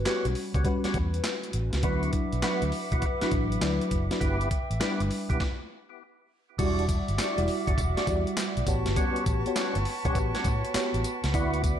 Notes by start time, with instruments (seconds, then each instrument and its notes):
Already playing: fm electric piano G3 C#4 F#4 B4
0.05 tonewheel organ G3 B3 C#4 F#4, fm electric piano G3 C#4 F#4 B4, snare, clap, closed hi-hat
0.25 fingered electric bass B1, closed hi-hat
0.35 open hi-hat
0.54 fingered electric bass C#2, tonewheel organ G3 B3 C#4 F#4, kick, closed hi-hat
0.64 fm electric piano G3 C#4 F#4 B4, kick, closed hi-hat
0.84 tonewheel organ G3 B3 C#4 F#4, muted fingered electric bass stroke, snare, closed hi-hat
0.94 fingered electric bass E2, kick, closed hi-hat
1.14 closed hi-hat
1.24 snare, clap, closed hi-hat
1.43 closed hi-hat
1.53 fingered electric bass A1, closed hi-hat
1.73 fingered electric bass C#2, snare, closed hi-hat
1.83 fingered electric bass D2, fm electric piano F#3 D4 E4 B4, tonewheel organ B3 E4 F#4, flute section B4 E5 F#5 D6, kick, closed hi-hat
2.03 closed hi-hat
2.13 kick, closed hi-hat
2.33 fingered electric bass B1, closed hi-hat
2.42 fm electric piano F#3 D4 E4 B4, tonewheel organ B3 E4 F#4, snare, clap, closed hi-hat
2.62 fingered electric bass D2, closed hi-hat
2.72 open hi-hat
2.92 fingered electric bass B1, tonewheel organ B3 E4 F#4, kick, closed hi-hat
3.02 kick, closed hi-hat
3.21 fm electric piano F#3 D4 E4 B4, tonewheel organ B3 E4 F#4, muted fingered electric bass stroke, snare, closed hi-hat
3.31 fingered electric bass A1, kick, closed hi-hat
3.52 closed hi-hat
3.61 fingered electric bass D2, fm electric piano F#3 D4 E4 B4, snare, clap, closed hi-hat
3.81 closed hi-hat
3.91 fingered electric bass F#1, kick, closed hi-hat
4.11 fm electric piano F#3 D4 E4 B4, snare, closed hi-hat
4.21 fingered electric bass G1, tonewheel organ B3 E4 G4, flute section E5 G5, kick, closed hi-hat
4.41 closed hi-hat
4.51 kick, closed hi-hat
4.71 fingered electric bass A1, closed hi-hat
4.80 fm electric piano G3 D4 E4 B4, tonewheel organ B3 E4 G4, snare, clap, closed hi-hat
5.00 fingered electric bass G1, closed hi-hat
5.11 open hi-hat
5.29 fingered electric bass B1, tonewheel organ B3 E4 G4, kick, closed hi-hat
5.40 kick, snare
6.58 fingered electric bass E1, tonewheel organ G3 D4 F#4, fm electric piano G3 E4 F#4 D5, flute section F#4 E5 F#5 D6, kick, closed hi-hat, crash, tambourine
6.79 closed hi-hat
6.89 kick, closed hi-hat, tambourine
7.08 fingered electric bass G1, closed hi-hat
7.18 tonewheel organ G3 D4 F#4, snare, clap, closed hi-hat, tambourine
7.37 fingered electric bass E1, fm electric piano G3 E4 F#4 D5, closed hi-hat
7.48 open hi-hat
7.67 fingered electric bass G1, tonewheel organ G3 D4 F#4, kick, closed hi-hat
7.78 fingered electric bass E1, kick, closed hi-hat, tambourine
7.97 tonewheel organ G3 D4 F#4, snare, closed hi-hat
8.07 fingered electric bass E2, fm electric piano G3 E4 F#4 D5, kick, closed hi-hat, tambourine
8.27 closed hi-hat
8.37 snare, clap, closed hi-hat, tambourine
8.57 fingered electric bass B1, closed hi-hat
8.67 fingered electric bass A1, fm electric piano B3 F#4 G4 C#5, flute section B4 A5 C#6, kick, closed hi-hat, tambourine
8.86 fingered electric bass G1, snare, closed hi-hat
8.96 tonewheel organ G3 B3 C#4 F#4, kick, closed hi-hat, tambourine
9.16 closed hi-hat
9.26 fingered electric bass A1, kick, closed hi-hat, tambourine
9.46 fm electric piano B3 F#4 G4 C#5, closed hi-hat
9.56 tonewheel organ G3 B3 C#4 F#4, snare, clap, closed hi-hat, tambourine
9.75 fingered electric bass G1, closed hi-hat
9.85 open hi-hat
10.05 fingered electric bass B1, tonewheel organ G3 B3 C#4 F#4, fm electric piano B3 F#4 G4 C#5, kick, closed hi-hat
10.15 fingered electric bass A1, kick, closed hi-hat, tambourine
10.35 tonewheel organ G3 B3 C#4 F#4, snare, closed hi-hat
10.44 fingered electric bass A2, kick, closed hi-hat, tambourine
10.65 closed hi-hat
10.74 fm electric piano B3 F#4 G4 C#5, muted fingered electric bass stroke, snare, clap, closed hi-hat, tambourine
10.94 fingered electric bass A1, closed hi-hat
11.04 closed hi-hat, tambourine
11.24 fingered electric bass C#2, snare, closed hi-hat
11.34 fingered electric bass D2, fm electric piano B3 E4 F#4 D5, tonewheel organ B3 E4 F#4, flute section E5 D6, kick, closed hi-hat, tambourine
11.54 closed hi-hat
11.64 kick, closed hi-hat, tambourine